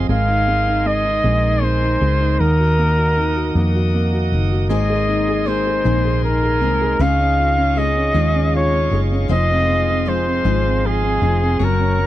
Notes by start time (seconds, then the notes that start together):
Already playing: F3 C4 D#5 F5 G#5
0.09 G#1 G#3 A#4 F5 G#5 C6
0.28 D#4
0.48 G#3
0.67 D#4
0.86 G#3 D#5
1.05 D#4
1.24 A#1 G#3
1.43 D#4
1.62 G#3 C5
1.82 D#4
2.01 C#2 G#3
2.21 D#4
2.40 D#2 D#3 A#4 F#5 D#6
2.59 F#4
2.78 A#3
2.97 F#4
3.17 D#3
3.36 F#4
3.55 F2 A#3
3.75 F#4
3.94 A#3
4.13 F#4
4.32 F#1 D#3
4.51 F#4
4.69 G#1 G#2 D#3 G#3 A#3 C4 D#4 G#4 D#5 G#5 C6
4.90 G#4
5.09 D#4
5.29 G#4
5.46 G#3 A#3 C4 D#4 G#4 C5
5.67 G#4
5.85 A#1 G#2 D#3 A#3 C4 D#4 G#4
6.05 G#4
6.23 D#4 A#4
6.43 G#4
6.61 C2 G#3 A#3 C4 D#4 G#4
6.81 G#4
6.99 C#2 C#3 G#3 D#4 F4 G#4 F5 C#6
7.19 C#4
7.38 F4
7.58 C#4
7.76 G#3 D#4 F4 G#4 D#5
7.96 C#4
8.14 D#2 C#3 G#3 D#4 F4 G#4
8.34 C#4
8.55 F4 C#5
8.74 C#4
8.90 F#1 D#4 F4 G#4
9.12 C#4
9.28 F1 F3 G#3 C4 D#4 G#4 D#5 C6
9.50 C4
9.69 F3
9.88 C4
10.05 F3 G#3 C4 D#4 G#4 C5
10.26 C4
10.45 G#1 F3 G#3 C4 D#4 G#4
10.65 C4
10.84 F3 G#4
11.03 C4
11.21 F1 F3 C4 D#4 G#4
11.42 C4
11.59 F#1 F#3 C#4 F#4 A#4 C#5 F#5 C#6
11.64 A#4
11.80 C#4
11.99 F#3